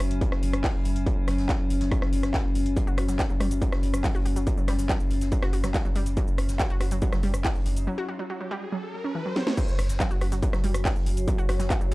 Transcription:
Already playing: F#3 C#4
0.00 F#1, cross-stick, closed hi-hat, open hi-hat
0.11 F#1, closed hi-hat
0.21 kick, closed hi-hat
0.32 F#1, cross-stick, snare
0.43 F#1, closed hi-hat, open hi-hat
0.53 F#1, cross-stick, closed hi-hat
0.64 kick, snare, clap, closed hi-hat, open hi-hat
0.75 F#1
0.85 F#1, closed hi-hat, open hi-hat
0.96 F#1, closed hi-hat
1.06 kick, closed hi-hat
1.17 F#1
1.27 F#1, cross-stick, snare, closed hi-hat, open hi-hat
1.38 F#1, snare, open hi-hat
1.49 kick, snare, clap, closed hi-hat
1.60 F#1
1.70 F#1, closed hi-hat, open hi-hat
1.80 F#1, snare, closed hi-hat
1.91 kick, cross-stick, closed hi-hat
2.02 F#1, cross-stick, snare
2.13 F#1, closed hi-hat, open hi-hat
2.23 F#1, cross-stick, snare, closed hi-hat
2.34 kick, snare, clap, closed hi-hat
2.45 F#1
2.55 F#1, closed hi-hat, open hi-hat
2.66 F#1, closed hi-hat
2.76 F#3, kick, closed hi-hat, shaker
2.87 F#1 F#4, shaker
2.97 F#1 F#4, cross-stick, closed hi-hat, open hi-hat
3.09 F#1 F#3, snare, closed hi-hat, shaker
3.19 F#3, kick, snare, clap, closed hi-hat, shaker
3.30 F#1 F#3, shaker
3.40 F#1 G3, cross-stick, closed hi-hat, open hi-hat
3.51 F#1, closed hi-hat, shaker
3.61 F#3, kick, closed hi-hat, shaker
3.72 F#1, cross-stick, snare, shaker
3.83 F#1, closed hi-hat, open hi-hat
3.94 F#1, cross-stick, closed hi-hat, shaker
4.04 F#3, kick, snare, clap, closed hi-hat, open hi-hat, shaker
4.15 F#1 F#4, shaker
4.25 F#1 F#4, closed hi-hat, open hi-hat
4.36 F#1 F#3, closed hi-hat, shaker
4.47 F#3, kick, closed hi-hat, shaker
4.57 F#1 F#3, shaker
4.68 F#1 G3, cross-stick, snare, closed hi-hat, open hi-hat
4.78 F#1, snare, open hi-hat, shaker
4.89 F#3, kick, snare, clap, closed hi-hat, shaker
5.00 F#1, shaker
5.10 F#1, closed hi-hat, open hi-hat
5.21 F#1, snare, closed hi-hat, shaker
5.32 F#3, kick, closed hi-hat, shaker
5.42 F#1 F#4, cross-stick, snare, shaker
5.53 F#1 F#4, closed hi-hat, open hi-hat
5.64 F#1 F#3, cross-stick, snare, closed hi-hat, shaker
5.74 F#3, kick, snare, clap, closed hi-hat, shaker
5.85 F#1 F#3, shaker
5.95 F#1 G3, closed hi-hat, open hi-hat
6.06 F#1, closed hi-hat, shaker
6.17 F#3, kick, closed hi-hat, riser, shaker
6.27 F#1, shaker
6.38 F#1, cross-stick, closed hi-hat, open hi-hat
6.49 F#1, snare, closed hi-hat, shaker
6.59 F#3, kick, snare, clap, closed hi-hat, shaker
6.70 F#1 F#4, shaker
6.81 F#1 F#4, cross-stick, closed hi-hat, open hi-hat
6.91 F#1 F#3, closed hi-hat, shaker
7.02 F#3, kick, closed hi-hat, shaker
7.12 F#1 F#3, cross-stick, snare, shaker
7.23 F#1 G3, closed hi-hat, open hi-hat
7.34 F#1, cross-stick, closed hi-hat, shaker
7.44 F#3, kick, snare, clap, closed hi-hat, open hi-hat, shaker
7.55 F#1, shaker
7.66 F#1, closed hi-hat, open hi-hat
7.77 F#1, closed hi-hat, shaker
7.87 F#3
7.98 F#4
8.09 F#4
8.19 F#3
8.30 F#3
8.41 F#3
8.51 G3
8.72 F#3
9.04 C#4
9.15 E3
9.26 F#3
9.36 F#3, snare
9.47 A3, snare
9.57 F#3 C#4 F#4, kick, closed hi-hat, crash, shaker
9.68 F#1, shaker
9.79 F#1, cross-stick, closed hi-hat, open hi-hat
9.89 F#1, snare, closed hi-hat, shaker
10.00 F#3, kick, snare, clap, closed hi-hat, shaker
10.11 F#1 F#4, shaker
10.21 F#1 F#4, cross-stick, closed hi-hat, open hi-hat
10.27 C#5
10.32 F#1 F#3 F#5, closed hi-hat, shaker
10.42 F#3, kick, closed hi-hat, shaker
10.53 F#1 F#3, cross-stick, snare, shaker
10.64 F#1 G3, closed hi-hat, open hi-hat
10.74 F#1, cross-stick, closed hi-hat, shaker
10.85 F#3, kick, snare, clap, closed hi-hat, open hi-hat, shaker
10.96 F#1, shaker
11.06 F#1, closed hi-hat, open hi-hat
11.17 F#1, closed hi-hat, shaker
11.28 F#3, kick, closed hi-hat, shaker
11.38 F#1 F#4, shaker
11.49 F#1 F#4, cross-stick, snare, closed hi-hat, open hi-hat
11.60 F#1 F#3, snare, closed hi-hat, shaker
11.70 F#3, kick, snare, clap, closed hi-hat, shaker
11.81 F#1 F#3, shaker
11.91 F#1

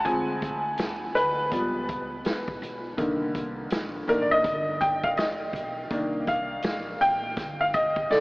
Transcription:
0.04 D2 F3 G#3 C4 G#5, kick, closed hi-hat
0.42 kick, closed hi-hat
0.78 D#2, snare, closed hi-hat
1.15 D2 B4, closed hi-hat
1.51 C#2 F3 G3 B3, kick, closed hi-hat
1.89 kick, closed hi-hat
2.25 B1, snare, closed hi-hat
2.48 kick
2.62 B1, closed hi-hat
2.97 C2 D3 D#3 A#3, kick, closed hi-hat
3.35 kick, closed hi-hat
3.70 A#1, snare, closed hi-hat
4.07 A1 D#3 A#3 D4 A#4, closed hi-hat
4.22 D5
4.31 D#5
4.44 G1, kick, closed hi-hat
4.81 G5, kick, closed hi-hat
5.04 F5, kick
5.17 F1 D#5, snare, closed hi-hat
5.53 B1, kick, closed hi-hat
5.90 C2 D#3 A#3 D4, kick, closed hi-hat
6.27 F5, kick, closed hi-hat
6.62 A#1, snare, closed hi-hat
7.01 A1 G5, closed hi-hat
7.37 G1, kick, snare, closed hi-hat
7.61 F5
7.74 D#5, kick, closed hi-hat
7.96 kick
8.11 A#1 A4 D5, snare

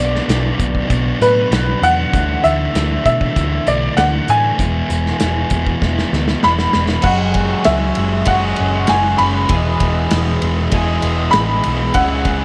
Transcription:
Already playing: B1 B2 F#3 D5
0.00 B3 D4
0.15 snare
0.27 B1 B2 F#3 B3 D4, snare, closed hi-hat
0.58 B1 B2 F#3 B3 D4, kick, closed hi-hat
0.75 kick
0.89 B1 B2 F#3 B3 D4, kick, closed hi-hat
1.20 A2 B2 F#3 B3 D4 B4, closed hi-hat
1.50 B1 B2 F#3 B3 D4, snare, closed hi-hat
1.82 E2 B2 F#3 B3 D4 F#5, closed hi-hat
2.11 D2 D3 E3 A3 D4, kick, closed hi-hat
2.43 D2 D3 E3 A3 D4 E5, closed hi-hat
2.74 D2 D3 E3 A3 D4, snare, closed hi-hat
3.04 B2 D3 E3 A3 D4 E5, kick, closed hi-hat
3.21 kick
3.35 D2 D3 E3 A3 D4, kick, closed hi-hat
3.65 B1 D3 E3 A3 D4 D5, closed hi-hat
3.96 D2 D3 E3 A3 D4 F#5, snare, closed hi-hat
4.28 A2 D3 E3 A3 D4 G#5, closed hi-hat
4.58 E1 E3 G#3 B3 E4, kick, closed hi-hat
4.90 E1 E3 G#3 B3 E4, closed hi-hat
5.06 snare
5.20 E1 E3 G#3 B3 E4, snare, closed hi-hat
5.50 E1 E3 G#3 B3 E4, kick, closed hi-hat
5.66 kick
5.82 E1 E3 G#3 B3 E4, kick, snare
5.99 snare
6.12 D2 E3 G#3 B3 E4, snare
6.28 snare
6.43 E1 E3 G#3 B3 E4 B5, snare
6.59 snare
6.73 E1 E3 G#3 B3 E4, snare
6.89 snare
7.02 F#1 F#3 G#3 C#4 F#4 G#4 F#5, kick, crash
7.34 G#3, kick, ride
7.64 C#2 F#3 E5, snare, ride
7.95 F#1 G#3, ride
8.24 F#1 F#3 G#3 C#4 F#4 F#5, kick, ride
8.56 F#1 C#4, ride
8.87 F#1 G#3 G#5, snare, ride
9.18 F#1 C#4 B5, ride
9.48 E1 E2 B2 E3 G#3 B3 G#4 E5, kick, ride
9.80 E1 G#3, kick, ride
10.11 E1 E3, snare, ride
10.42 E1 G#3, ride
10.72 E1 E2 B2 E3 G#3 B3 E4 G#4, kick, ride
11.02 E1 B3, ride
11.31 A1 G#3 B5, snare, ride
11.63 B1 B3, ride
11.94 C#2 C#3 E3 G#3 C#4 E4 F#5, kick, ride
12.25 G#3, kick, ride

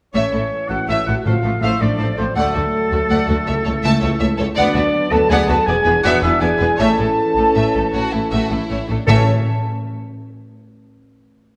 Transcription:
0.14 A1 A2 E3 A3 C#4 C#5 E5
0.32 A1 A2 A3 E4 A4
0.69 A1 A2 A3 E4 F#4 A4 F#5
0.88 A1 A2 A3 E4 C#5 E5
1.06 A1 A2 A3 E4 F#4 A4 F#5
1.24 A1 A2 F3 A3 F4 A4 C5 F5
1.43 A1 A2 A3 F4 A4
1.61 A1 A2 A3 E4 C5 E5 F5
1.79 A1 A2 A3 D4 F4 A4 D5
1.99 A1 A2 A3 A4 C5
2.17 A1 A2 A3 C4 F4 A4 C5
2.35 D2 F#3 A3 A4 D5 F#5
2.54 D2 A3 F#4 A4
2.91 D2 A3 F#4 A4
3.09 D2 A3 D5 F#5
3.27 D2 A3 F#4 A4
3.46 C#2 E3 A3 C#5 E5
3.65 C#2 A3 A4 C#5
3.83 C#2 A3 E5 A5
4.01 C#2 A3 A4 C#5
4.19 C#2 A3 C#5 E5
4.38 C#2 A3 A4 C#5
4.55 D2 F#3 B3 D4 D5 F#5
4.74 D2 B3 F#4 B4
5.10 D2 B3 F#4 A4 B4 A5
5.29 D2 B3 G#4 D5 F#5 G#5
5.48 D2 B3 F#4 A4 B4 A5
5.66 E1 E2 E3 B3 D4 G#4 B4 D5 G#5
5.85 E1 E2 B3 G#4 B4
6.03 E1 E2 B3 F#4 D5 E5 F#5
6.22 E1 E2 B3 E4 G#4 B4 E5
6.41 E1 E2 B3 G#4 B4 D5 G#5
6.59 E1 E2 B3 G#4 B4
6.77 A1 A2 A3 C#4 A4 C#5 E5 A5
6.97 A1 A2 A3 E4 A4
7.36 A1 A2 A3 C#4 A4
7.55 A1 A2 A3 E5
7.75 A1 A2 A3 A4
7.93 A1 A2 A3 F#4 C#5
8.12 A1 A2 A3 E4 A4
8.30 A1 A2 A3 F#4 E5
8.50 A1 A2 A3 E4 A4
8.70 A1 A2 A3 C#5
8.88 A1 A2 A3 D4 A4
9.07 A1 A2 E3 A3 C#4 A4 C#5 E5 A5

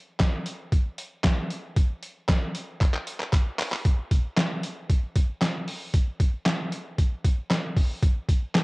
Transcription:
0.20 kick, snare, clap, closed hi-hat
0.46 closed hi-hat
0.72 kick, closed hi-hat
0.98 closed hi-hat
1.24 kick, snare, clap, closed hi-hat
1.50 closed hi-hat
1.76 kick, closed hi-hat
2.02 closed hi-hat
2.29 kick, snare, clap, closed hi-hat
2.55 closed hi-hat
2.81 kick, clap, closed hi-hat
2.94 clap
3.07 closed hi-hat
3.20 clap
3.33 kick, clap, closed hi-hat
3.59 clap, open hi-hat
3.72 clap
3.85 kick, closed hi-hat
4.11 kick, closed hi-hat
4.37 snare, clap, closed hi-hat
4.63 closed hi-hat
4.90 kick, closed hi-hat
5.16 kick, closed hi-hat
5.42 snare, clap, closed hi-hat
5.68 open hi-hat
5.94 kick, closed hi-hat
6.20 kick, closed hi-hat
6.46 snare, clap, closed hi-hat
6.72 closed hi-hat
6.98 kick, closed hi-hat
7.24 kick, closed hi-hat
7.51 snare, clap, closed hi-hat
7.77 kick, open hi-hat
8.03 kick, closed hi-hat
8.29 kick, closed hi-hat
8.55 snare, clap, closed hi-hat

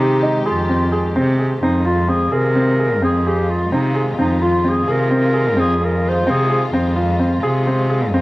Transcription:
Already playing: C3 D#3 G#3 D#4 G4
0.00 G4
0.23 D#4
0.46 F2 F4 G#4
0.69 C4
0.92 G#4
1.16 C3 C4
1.39 G#4
1.62 F2 D#3 G#3 C4 D#4 F4
1.85 F4
2.09 C4 G#4
2.32 C3 G#4 A#4
2.55 C4
2.79 G#4
3.01 F2 C4 G#4
3.26 G4 G#4
3.49 F4
3.71 C3 C4 D#4
3.95 G#4
4.18 F2 C4 D#4
4.42 F4
4.65 C4 G#4
4.88 C3 G#4 A#4
5.11 C4
5.34 G#4
5.57 F2 C4 G#4
5.81 G#4
5.85 A#4
6.09 C5
6.27 C3 C4 G#4
6.50 G#4
6.73 F2 C4
6.96 F4
7.19 C4
7.43 C3 G#4
7.67 C4
7.90 G#4
8.12 F2 C4

